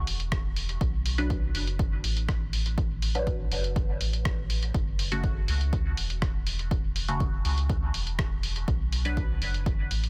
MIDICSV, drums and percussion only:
0, 0, Header, 1, 2, 480
1, 0, Start_track
1, 0, Tempo, 491803
1, 791, Time_signature, 4, 2, 24, 8
1, 9852, End_track
2, 0, Start_track
2, 0, Title_t, "Drums"
2, 71, Note_on_c, 9, 46, 87
2, 168, Note_off_c, 9, 46, 0
2, 194, Note_on_c, 9, 42, 39
2, 292, Note_off_c, 9, 42, 0
2, 310, Note_on_c, 9, 36, 127
2, 311, Note_on_c, 9, 37, 96
2, 311, Note_on_c, 9, 42, 33
2, 408, Note_off_c, 9, 36, 0
2, 408, Note_off_c, 9, 37, 0
2, 408, Note_off_c, 9, 42, 0
2, 551, Note_on_c, 9, 46, 86
2, 648, Note_off_c, 9, 46, 0
2, 674, Note_on_c, 9, 42, 39
2, 772, Note_off_c, 9, 42, 0
2, 790, Note_on_c, 9, 36, 125
2, 791, Note_on_c, 9, 42, 32
2, 888, Note_off_c, 9, 36, 0
2, 888, Note_off_c, 9, 42, 0
2, 1031, Note_on_c, 9, 46, 95
2, 1128, Note_off_c, 9, 46, 0
2, 1154, Note_on_c, 9, 42, 43
2, 1252, Note_off_c, 9, 42, 0
2, 1270, Note_on_c, 9, 36, 124
2, 1271, Note_on_c, 9, 42, 31
2, 1368, Note_off_c, 9, 36, 0
2, 1368, Note_off_c, 9, 42, 0
2, 1511, Note_on_c, 9, 46, 91
2, 1608, Note_off_c, 9, 46, 0
2, 1634, Note_on_c, 9, 42, 39
2, 1732, Note_off_c, 9, 42, 0
2, 1750, Note_on_c, 9, 36, 120
2, 1751, Note_on_c, 9, 42, 28
2, 1848, Note_off_c, 9, 36, 0
2, 1848, Note_off_c, 9, 42, 0
2, 1991, Note_on_c, 9, 46, 89
2, 2089, Note_off_c, 9, 46, 0
2, 2114, Note_on_c, 9, 42, 39
2, 2212, Note_off_c, 9, 42, 0
2, 2230, Note_on_c, 9, 36, 127
2, 2231, Note_on_c, 9, 37, 94
2, 2231, Note_on_c, 9, 42, 31
2, 2328, Note_off_c, 9, 36, 0
2, 2329, Note_off_c, 9, 37, 0
2, 2329, Note_off_c, 9, 42, 0
2, 2471, Note_on_c, 9, 46, 89
2, 2568, Note_off_c, 9, 46, 0
2, 2594, Note_on_c, 9, 42, 39
2, 2692, Note_off_c, 9, 42, 0
2, 2710, Note_on_c, 9, 36, 121
2, 2711, Note_on_c, 9, 42, 28
2, 2808, Note_off_c, 9, 36, 0
2, 2809, Note_off_c, 9, 42, 0
2, 2951, Note_on_c, 9, 46, 87
2, 3049, Note_off_c, 9, 46, 0
2, 3075, Note_on_c, 9, 42, 39
2, 3172, Note_off_c, 9, 42, 0
2, 3190, Note_on_c, 9, 36, 127
2, 3191, Note_on_c, 9, 42, 29
2, 3288, Note_off_c, 9, 36, 0
2, 3289, Note_off_c, 9, 42, 0
2, 3431, Note_on_c, 9, 46, 86
2, 3528, Note_off_c, 9, 46, 0
2, 3554, Note_on_c, 9, 42, 37
2, 3652, Note_off_c, 9, 42, 0
2, 3670, Note_on_c, 9, 36, 122
2, 3671, Note_on_c, 9, 42, 27
2, 3768, Note_off_c, 9, 36, 0
2, 3769, Note_off_c, 9, 42, 0
2, 3911, Note_on_c, 9, 46, 86
2, 4008, Note_off_c, 9, 46, 0
2, 4034, Note_on_c, 9, 42, 38
2, 4132, Note_off_c, 9, 42, 0
2, 4151, Note_on_c, 9, 36, 126
2, 4151, Note_on_c, 9, 37, 89
2, 4151, Note_on_c, 9, 42, 30
2, 4248, Note_off_c, 9, 36, 0
2, 4249, Note_off_c, 9, 37, 0
2, 4249, Note_off_c, 9, 42, 0
2, 4391, Note_on_c, 9, 46, 91
2, 4488, Note_off_c, 9, 46, 0
2, 4515, Note_on_c, 9, 42, 39
2, 4612, Note_off_c, 9, 42, 0
2, 4631, Note_on_c, 9, 36, 115
2, 4631, Note_on_c, 9, 42, 29
2, 4728, Note_off_c, 9, 36, 0
2, 4729, Note_off_c, 9, 42, 0
2, 4871, Note_on_c, 9, 46, 88
2, 4969, Note_off_c, 9, 46, 0
2, 4994, Note_on_c, 9, 42, 39
2, 5092, Note_off_c, 9, 42, 0
2, 5111, Note_on_c, 9, 36, 118
2, 5111, Note_on_c, 9, 42, 29
2, 5208, Note_off_c, 9, 36, 0
2, 5208, Note_off_c, 9, 42, 0
2, 5350, Note_on_c, 9, 46, 85
2, 5448, Note_off_c, 9, 46, 0
2, 5474, Note_on_c, 9, 42, 35
2, 5572, Note_off_c, 9, 42, 0
2, 5591, Note_on_c, 9, 36, 121
2, 5591, Note_on_c, 9, 42, 27
2, 5688, Note_off_c, 9, 36, 0
2, 5688, Note_off_c, 9, 42, 0
2, 5831, Note_on_c, 9, 46, 86
2, 5928, Note_off_c, 9, 46, 0
2, 5954, Note_on_c, 9, 42, 38
2, 6052, Note_off_c, 9, 42, 0
2, 6071, Note_on_c, 9, 36, 124
2, 6071, Note_on_c, 9, 37, 92
2, 6071, Note_on_c, 9, 42, 29
2, 6168, Note_off_c, 9, 36, 0
2, 6168, Note_off_c, 9, 37, 0
2, 6168, Note_off_c, 9, 42, 0
2, 6311, Note_on_c, 9, 46, 89
2, 6408, Note_off_c, 9, 46, 0
2, 6434, Note_on_c, 9, 42, 35
2, 6532, Note_off_c, 9, 42, 0
2, 6551, Note_on_c, 9, 36, 113
2, 6551, Note_on_c, 9, 42, 30
2, 6648, Note_off_c, 9, 36, 0
2, 6649, Note_off_c, 9, 42, 0
2, 6791, Note_on_c, 9, 46, 83
2, 6888, Note_off_c, 9, 46, 0
2, 6914, Note_on_c, 9, 42, 39
2, 7012, Note_off_c, 9, 42, 0
2, 7031, Note_on_c, 9, 36, 122
2, 7031, Note_on_c, 9, 42, 28
2, 7128, Note_off_c, 9, 36, 0
2, 7129, Note_off_c, 9, 42, 0
2, 7271, Note_on_c, 9, 46, 83
2, 7368, Note_off_c, 9, 46, 0
2, 7395, Note_on_c, 9, 42, 38
2, 7492, Note_off_c, 9, 42, 0
2, 7511, Note_on_c, 9, 36, 112
2, 7511, Note_on_c, 9, 42, 28
2, 7608, Note_off_c, 9, 36, 0
2, 7609, Note_off_c, 9, 42, 0
2, 7751, Note_on_c, 9, 46, 77
2, 7849, Note_off_c, 9, 46, 0
2, 7875, Note_on_c, 9, 42, 36
2, 7972, Note_off_c, 9, 42, 0
2, 7990, Note_on_c, 9, 36, 115
2, 7991, Note_on_c, 9, 37, 94
2, 7991, Note_on_c, 9, 42, 30
2, 8088, Note_off_c, 9, 36, 0
2, 8089, Note_off_c, 9, 37, 0
2, 8089, Note_off_c, 9, 42, 0
2, 8231, Note_on_c, 9, 46, 81
2, 8328, Note_off_c, 9, 46, 0
2, 8354, Note_on_c, 9, 42, 38
2, 8452, Note_off_c, 9, 42, 0
2, 8470, Note_on_c, 9, 36, 117
2, 8471, Note_on_c, 9, 42, 29
2, 8568, Note_off_c, 9, 36, 0
2, 8569, Note_off_c, 9, 42, 0
2, 8711, Note_on_c, 9, 46, 83
2, 8808, Note_off_c, 9, 46, 0
2, 8834, Note_on_c, 9, 42, 38
2, 8932, Note_off_c, 9, 42, 0
2, 8950, Note_on_c, 9, 36, 123
2, 8951, Note_on_c, 9, 42, 29
2, 9048, Note_off_c, 9, 36, 0
2, 9048, Note_off_c, 9, 42, 0
2, 9191, Note_on_c, 9, 46, 80
2, 9289, Note_off_c, 9, 46, 0
2, 9315, Note_on_c, 9, 42, 36
2, 9412, Note_off_c, 9, 42, 0
2, 9430, Note_on_c, 9, 36, 115
2, 9431, Note_on_c, 9, 42, 28
2, 9528, Note_off_c, 9, 36, 0
2, 9529, Note_off_c, 9, 42, 0
2, 9671, Note_on_c, 9, 46, 82
2, 9769, Note_off_c, 9, 46, 0
2, 9795, Note_on_c, 9, 42, 38
2, 9852, Note_off_c, 9, 42, 0
2, 9852, End_track
0, 0, End_of_file